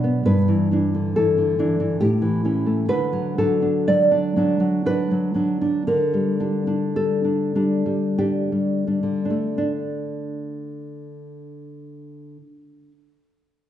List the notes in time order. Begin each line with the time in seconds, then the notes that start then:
Already playing: B2 F#3 D4 C#5
0.04 B3
0.25 G2 B4
0.48 E3
0.72 E3 D4
0.94 D3
1.16 E3 A4
1.38 D3
1.59 E3 D4
1.80 E3
2.00 A2 G4
2.22 E3
2.45 E3 C#4
2.66 A3
2.88 D3 B4
3.13 F#3
3.38 F#3 D4 A4
3.62 D4
3.88 F#3 D5
4.11 D4
4.36 F#3 D4
4.60 F#3
4.86 D4 B4
5.11 F#3
5.34 F#3 D4
5.62 D4
5.87 D3 A#4
6.14 G3
6.40 G3 D4
6.67 D4
6.96 G3 A4
7.25 D4
7.55 G3 D4
7.86 G3
8.18 D4 G4
8.52 G3
8.87 G3 D4
9.03 D3
9.25 D4
9.30 A3
9.58 D4